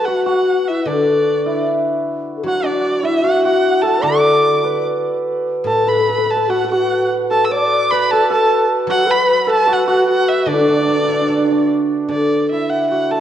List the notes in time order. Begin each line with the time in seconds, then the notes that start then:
Already playing: F#3 D4 E4 B4
0.00 A4
0.04 F#4 F#5
0.26 F#4 F#5
0.65 F#4 E5
0.70 E4
0.84 D3 D4 E4 D5
1.46 E4
2.37 A4
2.43 F#3 F#4
2.48 F#5
2.63 D4 D5
3.03 E4 E5
3.23 F#4 F#5
3.45 F#4 F#5
3.82 A4 A5
4.02 D3 D5 D6
4.64 B4
5.64 A2 A4 A5
5.75 B4
5.85 A4 B4 B5
5.91 B4
5.98 A4 B4
6.09 B4
6.18 B4
6.26 A4 B4
6.30 A5
6.36 B4
6.48 F#4 F#5
6.64 A4
6.69 F#4 A4 F#5
6.74 F#4
7.30 A4 A5
7.45 E6
7.50 D5 D6
7.91 B4 B5
8.11 A4 A5
8.28 A4 A5
8.87 F#3 F#4 F#5
9.07 B4 B5
9.45 A4 B4
9.51 A5
9.67 F#4
9.72 F#5
9.87 F#4 F#5
10.08 F#4 F#5
10.28 E5
10.46 D3 D4 D5
10.53 D4 E4
10.60 D4
10.68 A3 D4
10.76 D4
10.85 D4
10.91 D4
10.98 D4
11.05 D4 E4
11.13 D4
11.22 D4
11.28 D4 A4
11.37 D4
11.44 D4
11.52 D4
12.08 D3 D4 D5
12.51 E4 E5
12.69 F#5
12.90 F#4 F#5
13.11 A4 A5